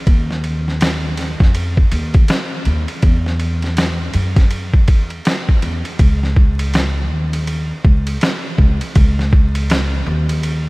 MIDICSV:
0, 0, Header, 1, 3, 480
1, 0, Start_track
1, 0, Key_signature, 4, "minor"
1, 0, Tempo, 740741
1, 44, Time_signature, 4, 2, 24, 8
1, 6928, End_track
2, 0, Start_track
2, 0, Title_t, "Upright bass"
2, 0, Program_c, 0, 32
2, 44, Note_on_c, 0, 39, 104
2, 885, Note_off_c, 0, 39, 0
2, 909, Note_on_c, 0, 41, 85
2, 1177, Note_off_c, 0, 41, 0
2, 1243, Note_on_c, 0, 39, 94
2, 1436, Note_off_c, 0, 39, 0
2, 1723, Note_on_c, 0, 39, 91
2, 1841, Note_off_c, 0, 39, 0
2, 1962, Note_on_c, 0, 40, 98
2, 2657, Note_off_c, 0, 40, 0
2, 2684, Note_on_c, 0, 42, 82
2, 3164, Note_off_c, 0, 42, 0
2, 3164, Note_on_c, 0, 40, 83
2, 3357, Note_off_c, 0, 40, 0
2, 3646, Note_on_c, 0, 40, 90
2, 3763, Note_off_c, 0, 40, 0
2, 3884, Note_on_c, 0, 37, 93
2, 4604, Note_off_c, 0, 37, 0
2, 4604, Note_on_c, 0, 39, 95
2, 4990, Note_off_c, 0, 39, 0
2, 5083, Note_on_c, 0, 37, 86
2, 5277, Note_off_c, 0, 37, 0
2, 5562, Note_on_c, 0, 37, 91
2, 5680, Note_off_c, 0, 37, 0
2, 5805, Note_on_c, 0, 37, 105
2, 6499, Note_off_c, 0, 37, 0
2, 6522, Note_on_c, 0, 39, 97
2, 6928, Note_off_c, 0, 39, 0
2, 6928, End_track
3, 0, Start_track
3, 0, Title_t, "Drums"
3, 44, Note_on_c, 9, 36, 98
3, 44, Note_on_c, 9, 51, 62
3, 109, Note_off_c, 9, 36, 0
3, 109, Note_off_c, 9, 51, 0
3, 198, Note_on_c, 9, 38, 33
3, 263, Note_off_c, 9, 38, 0
3, 284, Note_on_c, 9, 51, 42
3, 348, Note_off_c, 9, 51, 0
3, 441, Note_on_c, 9, 38, 32
3, 506, Note_off_c, 9, 38, 0
3, 524, Note_on_c, 9, 44, 56
3, 524, Note_on_c, 9, 51, 85
3, 534, Note_on_c, 9, 38, 100
3, 589, Note_off_c, 9, 44, 0
3, 589, Note_off_c, 9, 51, 0
3, 599, Note_off_c, 9, 38, 0
3, 761, Note_on_c, 9, 51, 73
3, 772, Note_on_c, 9, 38, 31
3, 826, Note_off_c, 9, 51, 0
3, 837, Note_off_c, 9, 38, 0
3, 908, Note_on_c, 9, 36, 106
3, 920, Note_on_c, 9, 38, 39
3, 973, Note_off_c, 9, 36, 0
3, 984, Note_off_c, 9, 38, 0
3, 1001, Note_on_c, 9, 51, 71
3, 1066, Note_off_c, 9, 51, 0
3, 1148, Note_on_c, 9, 36, 90
3, 1213, Note_off_c, 9, 36, 0
3, 1241, Note_on_c, 9, 51, 60
3, 1306, Note_off_c, 9, 51, 0
3, 1386, Note_on_c, 9, 51, 42
3, 1390, Note_on_c, 9, 36, 106
3, 1451, Note_off_c, 9, 51, 0
3, 1455, Note_off_c, 9, 36, 0
3, 1479, Note_on_c, 9, 44, 58
3, 1479, Note_on_c, 9, 51, 75
3, 1490, Note_on_c, 9, 38, 114
3, 1544, Note_off_c, 9, 44, 0
3, 1544, Note_off_c, 9, 51, 0
3, 1555, Note_off_c, 9, 38, 0
3, 1720, Note_on_c, 9, 51, 55
3, 1785, Note_off_c, 9, 51, 0
3, 1868, Note_on_c, 9, 51, 47
3, 1932, Note_off_c, 9, 51, 0
3, 1960, Note_on_c, 9, 51, 60
3, 1963, Note_on_c, 9, 36, 104
3, 2025, Note_off_c, 9, 51, 0
3, 2027, Note_off_c, 9, 36, 0
3, 2114, Note_on_c, 9, 38, 33
3, 2179, Note_off_c, 9, 38, 0
3, 2200, Note_on_c, 9, 51, 49
3, 2265, Note_off_c, 9, 51, 0
3, 2348, Note_on_c, 9, 51, 41
3, 2358, Note_on_c, 9, 38, 33
3, 2413, Note_off_c, 9, 51, 0
3, 2423, Note_off_c, 9, 38, 0
3, 2442, Note_on_c, 9, 44, 61
3, 2442, Note_on_c, 9, 51, 84
3, 2451, Note_on_c, 9, 38, 95
3, 2506, Note_off_c, 9, 44, 0
3, 2506, Note_off_c, 9, 51, 0
3, 2516, Note_off_c, 9, 38, 0
3, 2680, Note_on_c, 9, 51, 70
3, 2745, Note_off_c, 9, 51, 0
3, 2828, Note_on_c, 9, 36, 101
3, 2828, Note_on_c, 9, 51, 46
3, 2839, Note_on_c, 9, 38, 31
3, 2893, Note_off_c, 9, 36, 0
3, 2893, Note_off_c, 9, 51, 0
3, 2904, Note_off_c, 9, 38, 0
3, 2920, Note_on_c, 9, 51, 65
3, 2985, Note_off_c, 9, 51, 0
3, 3069, Note_on_c, 9, 36, 79
3, 3134, Note_off_c, 9, 36, 0
3, 3160, Note_on_c, 9, 51, 58
3, 3164, Note_on_c, 9, 36, 83
3, 3225, Note_off_c, 9, 51, 0
3, 3228, Note_off_c, 9, 36, 0
3, 3306, Note_on_c, 9, 51, 42
3, 3371, Note_off_c, 9, 51, 0
3, 3403, Note_on_c, 9, 44, 54
3, 3403, Note_on_c, 9, 51, 75
3, 3414, Note_on_c, 9, 38, 118
3, 3468, Note_off_c, 9, 44, 0
3, 3468, Note_off_c, 9, 51, 0
3, 3479, Note_off_c, 9, 38, 0
3, 3555, Note_on_c, 9, 36, 73
3, 3620, Note_off_c, 9, 36, 0
3, 3644, Note_on_c, 9, 51, 59
3, 3709, Note_off_c, 9, 51, 0
3, 3791, Note_on_c, 9, 51, 48
3, 3856, Note_off_c, 9, 51, 0
3, 3883, Note_on_c, 9, 51, 68
3, 3884, Note_on_c, 9, 36, 94
3, 3948, Note_off_c, 9, 51, 0
3, 3949, Note_off_c, 9, 36, 0
3, 4040, Note_on_c, 9, 38, 33
3, 4105, Note_off_c, 9, 38, 0
3, 4125, Note_on_c, 9, 36, 84
3, 4189, Note_off_c, 9, 36, 0
3, 4272, Note_on_c, 9, 51, 62
3, 4337, Note_off_c, 9, 51, 0
3, 4365, Note_on_c, 9, 44, 53
3, 4365, Note_on_c, 9, 51, 71
3, 4375, Note_on_c, 9, 38, 94
3, 4430, Note_off_c, 9, 44, 0
3, 4430, Note_off_c, 9, 51, 0
3, 4440, Note_off_c, 9, 38, 0
3, 4751, Note_on_c, 9, 51, 65
3, 4816, Note_off_c, 9, 51, 0
3, 4843, Note_on_c, 9, 51, 65
3, 4907, Note_off_c, 9, 51, 0
3, 5084, Note_on_c, 9, 36, 88
3, 5149, Note_off_c, 9, 36, 0
3, 5228, Note_on_c, 9, 51, 69
3, 5293, Note_off_c, 9, 51, 0
3, 5322, Note_on_c, 9, 44, 53
3, 5322, Note_on_c, 9, 51, 78
3, 5333, Note_on_c, 9, 38, 121
3, 5387, Note_off_c, 9, 44, 0
3, 5387, Note_off_c, 9, 51, 0
3, 5398, Note_off_c, 9, 38, 0
3, 5562, Note_on_c, 9, 36, 91
3, 5627, Note_off_c, 9, 36, 0
3, 5709, Note_on_c, 9, 51, 66
3, 5774, Note_off_c, 9, 51, 0
3, 5802, Note_on_c, 9, 51, 75
3, 5804, Note_on_c, 9, 36, 106
3, 5867, Note_off_c, 9, 51, 0
3, 5869, Note_off_c, 9, 36, 0
3, 5956, Note_on_c, 9, 38, 33
3, 6021, Note_off_c, 9, 38, 0
3, 6044, Note_on_c, 9, 36, 83
3, 6108, Note_off_c, 9, 36, 0
3, 6189, Note_on_c, 9, 51, 59
3, 6254, Note_off_c, 9, 51, 0
3, 6285, Note_on_c, 9, 44, 59
3, 6285, Note_on_c, 9, 51, 83
3, 6295, Note_on_c, 9, 38, 103
3, 6350, Note_off_c, 9, 44, 0
3, 6350, Note_off_c, 9, 51, 0
3, 6360, Note_off_c, 9, 38, 0
3, 6670, Note_on_c, 9, 51, 75
3, 6735, Note_off_c, 9, 51, 0
3, 6761, Note_on_c, 9, 51, 69
3, 6826, Note_off_c, 9, 51, 0
3, 6928, End_track
0, 0, End_of_file